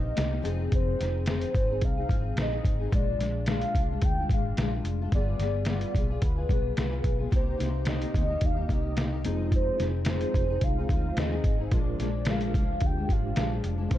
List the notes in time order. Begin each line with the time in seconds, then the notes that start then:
Already playing: A#1 C3 A#3 D#4 G4 D#5
0.15 C2 C3 A#3 D#4 G4, snare, closed hi-hat
0.30 A#3 D#4 G4
0.42 F1 F3 C4 D#4 G#4, closed hi-hat
0.72 F1 C5, kick, closed hi-hat
0.99 F1 F3 C4 D#4 G#4, snare, closed hi-hat
1.26 F3 C4 D#4 G#4 C5, snare, closed hi-hat
1.41 closed hi-hat
1.54 G#1 F3 C4 D#4 G#4, kick, closed hi-hat
1.70 C4 D#4 G#4
1.81 C2 F5, kick, closed hi-hat
1.97 C4 D#4 G#4
2.08 G#1 F3 C4 D#4 G#4, kick, closed hi-hat
2.36 A#1 F3 C4 D#4 G#4, snare, closed hi-hat
2.42 D#5
2.52 C4 D#4 G#4
2.64 G#1, kick, closed hi-hat
2.80 C4 D#4 G#4
2.91 A#1 A#2 G#3 D4 F4 D5, kick, closed hi-hat
3.19 A#1 A#2 G#3 D4 F4, snare, closed hi-hat
3.46 A#2 G#3 D4 F4 F5, snare, closed hi-hat
3.62 closed hi-hat
3.74 C2 A#2 G#3 D4 F4, kick, closed hi-hat
3.90 G#3 D4 F4
4.02 D2 G5, kick, closed hi-hat
4.19 G#3 D4 F4
4.29 G#1 A#2 G#3 D4 F5, kick, closed hi-hat
4.34 F4
4.57 A#1 A#2 G#3 D4 F4, snare, closed hi-hat
4.74 G#3 D4 F4
4.84 F1, closed hi-hat
5.01 G#3 D4 F4
5.12 G1 G3 B3 F4 G#4 D5, kick, closed hi-hat
5.39 G1 G3 B3 F4 G#4, snare, closed hi-hat
5.65 G3 B3 F4 D5, snare, closed hi-hat
5.69 G#4
5.81 closed hi-hat
5.95 B1 G3 B3 F4 G#4, kick, closed hi-hat
6.10 B3 F4 G#4
6.22 D2 B4, kick, closed hi-hat
6.36 B3 F4 G#4
6.49 B1 G3 B3 F4 G#4, kick, closed hi-hat
6.76 C2 G3 B3 F4 G#4 B4, snare, closed hi-hat
6.90 B3 F4 G#4
7.04 B1, kick, closed hi-hat
7.19 B3 F4 G#4
7.30 C2 C3 A#3 D#4 G4 C5, kick, closed hi-hat
7.35 C5
7.58 C2 C3 A#3 D#4 G4, snare, closed hi-hat
7.85 C3 A#3 D#4 G4 C5 D#5, snare, closed hi-hat
8.02 closed hi-hat
8.14 D2 C3 A#3 D#4 G4, kick, closed hi-hat
8.28 A#3 D#4 G4
8.41 D#2 A#3 D#4 G4 D#5, kick, closed hi-hat
8.45 F5
8.56 A#3 D#4 G4
8.65 C3 A#3 F5
8.69 C2 D#4 G4 D#5, kick, closed hi-hat
8.95 C3 A#3 D#4 G4, snare, closed hi-hat
9.12 A#3 D#4 G4
9.24 F1 F3 G#3 C4 D#4 F4 G#4 C5, closed hi-hat
9.52 C5, kick, closed hi-hat
9.78 F1 F3 C4 D#4 G#4, snare, closed hi-hat
10.05 F3 G#3 C4 D#4 F4 G#4, snare, closed hi-hat
10.10 C5
10.21 closed hi-hat
10.34 F1 F3 C4 D#4 G#4, kick, closed hi-hat
10.50 C4 D#4 G#4
10.61 C2 G#3 D#4 F4 C5 F5, kick, closed hi-hat
10.78 C4 D#4 G#4
10.89 D2 F3 C4 D#4 G#4, kick, closed hi-hat
11.17 D#2 F3 C4 D#4 G#4 D#5, snare, closed hi-hat
11.32 C4 D#4 G#4
11.44 G#1, kick, closed hi-hat
11.59 C4 D#4 G#4
11.71 A#1 A#2 F3 G#3 D4 F4 A#4, kick, closed hi-hat
11.75 D5
11.99 A#1 A#2 F3 G#3 D4, snare, closed hi-hat
12.25 A#2 F3 G#3 D4 F4 A#4, snare, closed hi-hat
12.30 F5
12.41 closed hi-hat
12.54 C2 A#2 F3 G#3 D4, kick, closed hi-hat
12.70 F3 G#3 D4
12.80 D2 G#3 D4 F4 G4, kick, closed hi-hat
12.86 G5
12.97 F3 G#3 D4
13.09 G#1 A#2 F3 G#3 D4 F5, kick, closed hi-hat
13.36 A#1 A#2 F3 G#3 D4, snare, closed hi-hat
13.51 F3 G#3 D4
13.64 F1, closed hi-hat
13.78 F3 G#3 D4
13.89 C2 C3 D#3 A#3 D4 D#4 C5, kick, closed hi-hat
13.94 C5